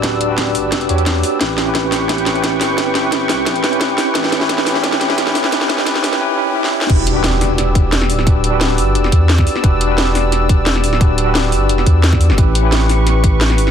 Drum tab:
CC |----------------|----------------|----------------|----------------|
HH |x-x-x-o-xxxxx-o-|x-x-x-o-xxxxx-o-|x-x-x-o-xxxxx-o-|x-x-x-o-xxxxx-o-|
SD |o---o---o---o---|o-o-o-o-o-o-o-o-|o-o-o-o-o-o-o-o-|oooooooooooooooo|
BD |o---o---o---o---|o---o---o---o---|o---o---o---o---|o---o---o---o---|

CC |----------------|x---------------|----------------|----------------|
HH |x-x-x-ox--------|x-x-x-o-x-x-x-o-|x-x-x-o-x-x-x-o-|x-x-x-o-x-x-x-o-|
SD |oooooooo-----o-o|----o-o-o---oo-o|----o----o--oo-o|----o-o-o---oo-o|
BD |o---o-----------|o---------o-----|o---------o--o--|o---------o-----|

CC |----------------|----------------|
HH |x-x-x-o-x-x-x-o-|x-x-x-o-x-x-x-o-|
SD |----o----o--oo-o|----o-o-o---oo-o|
BD |o---------o--o--|o---------o-----|